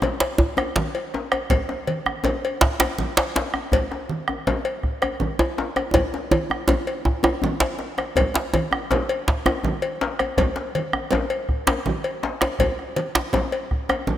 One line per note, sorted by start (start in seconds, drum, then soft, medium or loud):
0.02 cowbell soft
0.02 djembe slap medium
0.02 high conga soft
0.02 low conga medium
0.02 djembe bass medium
0.20 cowbell soft
0.20 djembe slap medium
0.38 bombo rim soft
0.38 bombo low medium
0.38 djembe tone medium
0.57 bombo rim medium
0.57 cowbell soft
0.57 djembe slap medium
0.57 djembe tone soft
0.76 djembe slap medium
0.76 djembe slap soft
0.76 high conga medium
0.76 djembe bass medium
0.76 low conga medium
0.95 cowbell soft
1.14 bombo rim soft
1.14 djembe slap medium
1.32 bombo rim medium
1.32 cowbell soft
1.32 djembe tone soft
1.50 bombo rim soft
1.50 bombo low loud
1.50 cowbell medium
1.50 djembe slap soft
1.50 high conga soft
1.50 low conga medium
1.50 djembe bass medium
1.69 bombo rim soft
1.69 djembe slap medium
1.87 cowbell soft
1.87 high conga medium
2.06 bombo rim medium
2.06 djembe tone medium
2.06 high conga soft
2.24 cowbell soft
2.24 djembe slap medium
2.24 high conga soft
2.24 djembe bass medium
2.24 low conga medium
2.45 cowbell soft
2.61 bombo rim soft
2.61 bombo low medium
2.61 djembe slap medium
2.80 bombo rim medium
2.80 cowbell soft
2.80 djembe slap medium
2.80 djembe tone medium
2.98 djembe slap soft
2.98 high conga medium
2.98 low conga medium
2.98 djembe bass medium
3.17 cowbell soft
3.17 djembe slap medium
3.36 bombo rim soft
3.36 djembe slap medium
3.54 bombo rim medium
3.54 djembe tone soft
3.72 bombo rim soft
3.72 bombo low medium
3.72 cowbell medium
3.72 djembe slap soft
3.72 high conga soft
3.72 djembe bass medium
3.72 low conga medium
3.91 bombo rim soft
3.91 djembe slap medium
4.09 high conga medium
4.28 bombo rim medium
4.28 high conga soft
4.28 djembe tone medium
4.47 cowbell soft
4.47 djembe slap medium
4.47 high conga soft
4.47 low conga medium
4.47 djembe bass medium
4.65 cowbell soft
4.83 bombo rim soft
4.83 bombo low medium
5.02 bombo rim medium
5.02 cowbell soft
5.02 djembe tone medium
5.20 djembe slap soft
5.20 high conga medium
5.20 low conga medium
5.20 djembe bass medium
5.39 cowbell soft
5.39 djembe tone medium
5.58 bombo rim soft
5.58 djembe slap medium
5.76 bombo rim medium
5.76 cowbell soft
5.76 djembe tone medium
5.94 bombo low medium
5.94 cowbell medium
5.94 djembe slap soft
5.94 djembe tone medium
5.94 djembe bass medium
5.94 low conga medium
6.14 djembe slap medium
6.31 cowbell soft
6.31 djembe tone medium
6.31 high conga medium
6.50 bombo rim medium
6.50 djembe slap soft
6.50 djembe tone medium
6.68 cowbell soft
6.68 djembe tone medium
6.68 low conga medium
6.68 djembe bass medium
6.87 cowbell soft
7.05 bombo low medium
7.05 djembe tone medium
7.05 high conga soft
7.23 bombo rim medium
7.23 cowbell soft
7.23 djembe slap medium
7.23 djembe tone medium
7.23 high conga soft
7.42 bombo rim soft
7.42 high conga medium
7.42 djembe bass medium
7.42 low conga medium
7.60 cowbell soft
7.60 djembe slap medium
7.60 high conga soft
7.60 djembe bass soft
7.79 bombo rim soft
7.79 djembe slap soft
7.98 bombo rim medium
7.98 cowbell soft
7.98 djembe slap medium
7.98 high conga soft
8.16 bombo rim soft
8.16 bombo low loud
8.16 cowbell medium
8.16 djembe slap soft
8.16 high conga soft
8.16 djembe bass medium
8.16 low conga medium
8.34 bombo rim soft
8.34 djembe slap medium
8.54 cowbell soft
8.54 djembe tone medium
8.54 high conga medium
8.71 bombo rim medium
8.71 djembe tone medium
8.71 high conga soft
8.91 cowbell medium
8.91 djembe slap medium
8.91 high conga soft
8.91 djembe bass medium
8.91 low conga medium
9.09 cowbell medium
9.28 bombo rim soft
9.28 bombo low loud
9.28 djembe slap medium
9.46 bombo rim medium
9.46 cowbell soft
9.46 djembe slap medium
9.46 djembe tone medium
9.64 djembe slap soft
9.64 high conga medium
9.64 djembe bass medium
9.64 low conga medium
9.82 cowbell soft
10.01 bombo rim soft
10.01 djembe slap medium
10.19 bombo rim medium
10.19 cowbell soft
10.19 djembe tone medium
10.37 bombo rim soft
10.37 bombo low loud
10.37 cowbell medium
10.37 djembe slap soft
10.37 high conga soft
10.37 djembe bass medium
10.37 low conga medium
10.56 bombo rim soft
10.56 djembe slap medium
10.75 cowbell soft
10.75 high conga medium
10.93 bombo rim medium
10.93 djembe tone medium
10.93 high conga soft
11.11 cowbell soft
11.11 djembe slap medium
11.11 high conga soft
11.11 low conga medium
11.11 djembe bass medium
11.30 cowbell soft
11.49 bombo rim soft
11.49 bombo low medium
11.67 bombo rim medium
11.67 cowbell soft
11.67 djembe slap medium
11.67 djembe tone medium
11.86 djembe slap soft
11.86 high conga medium
11.86 low conga medium
11.86 djembe bass medium
12.04 cowbell soft
12.23 bombo rim soft
12.23 djembe slap medium
12.41 bombo rim medium
12.41 cowbell soft
12.41 djembe slap medium
12.41 djembe tone medium
12.59 bombo rim soft
12.59 bombo low medium
12.59 cowbell medium
12.59 djembe slap soft
12.59 high conga soft
12.59 low conga medium
12.59 djembe bass medium
12.79 bombo rim soft
12.96 cowbell soft
12.96 high conga medium
13.15 bombo rim medium
13.15 djembe slap medium
13.15 djembe tone medium
13.15 high conga soft
13.33 cowbell medium
13.33 djembe slap medium
13.33 high conga soft
13.33 low conga medium
13.33 djembe bass medium
13.52 cowbell medium
13.71 bombo rim soft
13.71 bombo low medium
13.89 bombo rim medium
13.89 cowbell soft
13.89 djembe slap medium
13.89 djembe tone medium
14.07 djembe slap soft
14.07 high conga medium
14.07 low conga medium
14.07 djembe bass medium